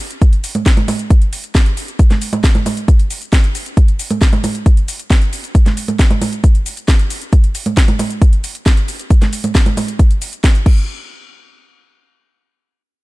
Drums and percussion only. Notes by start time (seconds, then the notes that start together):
0.10 closed hi-hat, shaker
0.22 kick, closed hi-hat, shaker
0.33 closed hi-hat, shaker
0.44 open hi-hat, shaker
0.55 closed hi-hat, high conga, shaker
0.66 kick, snare, closed hi-hat, shaker
0.77 closed hi-hat, high conga, shaker
0.88 open hi-hat, high conga, shaker
0.99 closed hi-hat, shaker
1.10 kick, closed hi-hat, shaker
1.22 closed hi-hat, shaker
1.33 open hi-hat, shaker
1.44 closed hi-hat, shaker
1.55 kick, snare, closed hi-hat, shaker
1.66 closed hi-hat, shaker
1.77 open hi-hat, shaker
1.88 closed hi-hat, shaker
1.99 kick, closed hi-hat, shaker
2.10 snare, closed hi-hat, high conga, shaker
2.22 open hi-hat, shaker
2.33 closed hi-hat, high conga, shaker
2.44 kick, snare, closed hi-hat, shaker
2.55 closed hi-hat, high conga, shaker
2.66 open hi-hat, high conga, shaker
2.77 closed hi-hat, shaker
2.88 kick, closed hi-hat, shaker
2.99 closed hi-hat, shaker
3.11 open hi-hat, shaker
3.22 closed hi-hat, shaker
3.33 kick, snare, closed hi-hat, shaker
3.44 closed hi-hat, shaker
3.55 open hi-hat, shaker
3.66 closed hi-hat, shaker
3.77 kick, closed hi-hat, shaker
3.88 closed hi-hat, shaker
3.99 open hi-hat, shaker
4.11 closed hi-hat, high conga, shaker
4.22 kick, snare, closed hi-hat, shaker
4.33 closed hi-hat, high conga, shaker
4.44 open hi-hat, high conga, shaker
4.55 closed hi-hat, shaker
4.66 kick, closed hi-hat, shaker
4.77 closed hi-hat, shaker
4.88 open hi-hat, shaker
4.99 closed hi-hat, shaker
5.10 kick, snare, closed hi-hat, shaker
5.22 closed hi-hat, shaker
5.33 open hi-hat, shaker
5.44 closed hi-hat, shaker
5.55 kick, closed hi-hat, shaker
5.66 snare, closed hi-hat, high conga, shaker
5.77 open hi-hat, shaker
5.88 closed hi-hat, high conga, shaker
5.99 kick, snare, closed hi-hat, shaker
6.11 closed hi-hat, high conga, shaker
6.22 open hi-hat, high conga, shaker
6.33 closed hi-hat, shaker
6.44 kick, closed hi-hat, shaker
6.55 closed hi-hat, shaker
6.66 open hi-hat, shaker
6.77 closed hi-hat, shaker
6.88 kick, snare, closed hi-hat, shaker
6.99 closed hi-hat, shaker
7.10 open hi-hat, shaker
7.22 closed hi-hat, shaker
7.33 kick, closed hi-hat, shaker
7.44 closed hi-hat, shaker
7.55 open hi-hat, shaker
7.66 closed hi-hat, high conga, shaker
7.77 kick, snare, closed hi-hat, shaker
7.88 closed hi-hat, high conga, shaker
7.99 open hi-hat, high conga, shaker
8.10 closed hi-hat, shaker
8.22 kick, closed hi-hat, shaker
8.33 closed hi-hat, shaker
8.44 open hi-hat, shaker
8.55 closed hi-hat, shaker
8.66 kick, snare, closed hi-hat, shaker
8.77 closed hi-hat, shaker
8.88 open hi-hat, shaker
8.99 closed hi-hat, shaker
9.11 kick, closed hi-hat, shaker
9.22 snare, closed hi-hat, high conga, shaker
9.33 open hi-hat, shaker
9.44 closed hi-hat, high conga, shaker
9.55 kick, snare, closed hi-hat, shaker
9.66 closed hi-hat, high conga, shaker
9.77 open hi-hat, high conga, shaker
9.88 closed hi-hat, shaker
9.99 kick, closed hi-hat, shaker
10.11 closed hi-hat, shaker
10.22 open hi-hat, shaker
10.33 closed hi-hat, shaker
10.44 kick, snare, closed hi-hat, shaker
10.55 closed hi-hat, shaker
10.66 kick, crash